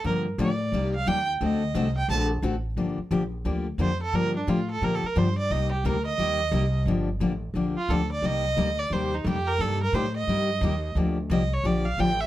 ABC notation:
X:1
M:4/4
L:1/16
Q:"Swing" 1/4=176
K:Gm
V:1 name="Violin"
B2 z2 d6 f2 g2 z2 | e6 g2 a2 z6 | z12 c2 A2 | B2 D2 F2 A2 (3B2 A2 B2 c2 d2 |
e2 G2 B2 e8- e2 | z8 z2 F2 A2 d2 | e6 d2 c2 E2 G2 B2 | A2 B2 c2 e8- e2 |
z4 e2 ^c2 d2 f2 g2 =e2 |]
V:2 name="Steel-string acoustic guitar"
[D,F,B,DG]2 z2 [D,F,B,DG] z3 [C,G,B,EG]2 z2 [C,G,B,EG] z3 | [D,A,C^FA]2 z2 [D,A,CFA] z3 [D,A,CFA]2 z2 [D,A,CFA] z3 | [D,F,B,DG]2 z2 [D,F,B,DG] z3 [D,F,B,DG]2 z2 [D,F,B,DG] z3 | [D,F,B,DG]2 z2 [D,F,B,DG] z3 [D,F,B,DG]2 z2 [D,F,B,DG] z3 |
[C,G,B,EG]2 z2 [C,G,B,EG] z3 [C,G,B,EG]2 z2 [C,G,B,EG] z3 | [D,F,B,DG]2 z2 [D,F,B,DG] z3 [D,F,B,DG]2 z2 [D,F,B,DG] z3 | [C,G,B,EG]2 z2 [C,G,B,EG] z3 [C,G,B,EG]2 z2 [C,G,B,EG] z3 | [C,G,B,EG]2 z2 [C,G,B,EG] z3 [C,G,B,EG]2 z2 [C,G,B,EG] z3 |
[D,F,B,DG]2 z2 [D,F,B,DG] z3 [D,F,B,DG]2 z2 [D,F,B,DG] z3 |]
V:3 name="Upright bass" clef=bass
G,,4 A,,4 C,,4 E,,4 | D,,4 C,,4 B,,,4 A,,,4 | G,,,2 z2 B,,,4 D,,4 F,,4 | G,,4 A,,4 B,,2 z2 G,,4 |
C,,4 D,,4 E,,4 C,,4 | G,,,4 A,,,4 B,,,2 z2 D,,4 | C,,4 D,,4 E,,4 F,,4 | G,,4 A,,4 G,,4 E,,4 |
D,,4 C,,4 B,,,4 A,,,4 |]